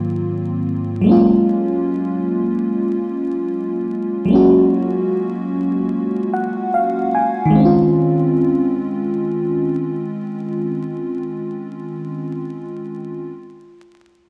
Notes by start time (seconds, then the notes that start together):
Already playing: G#2 D#3 F#3 A#3 C4 F4
1.02 F#3 G#3
1.07 A#3 C#4
1.12 F4
4.26 F#3 G#3
4.30 A#3 C#4
4.35 F#4
6.34 F#5
6.74 F5
7.15 G#5
7.45 D#3
7.50 G#3
7.55 C4
7.60 C#4
7.65 F4